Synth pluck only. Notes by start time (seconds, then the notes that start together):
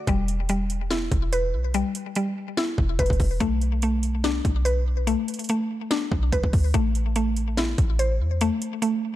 0.08 G3
0.49 G3
0.90 E4
1.33 B4
1.74 G3
2.16 G3
2.57 E4
2.99 B4
3.40 A3
3.83 A3
4.24 D4
4.65 B4
5.07 A3
5.50 A3
5.91 D4
6.32 B4
6.74 A3
7.16 A3
7.58 E4
7.99 C5
8.41 A3
8.82 A3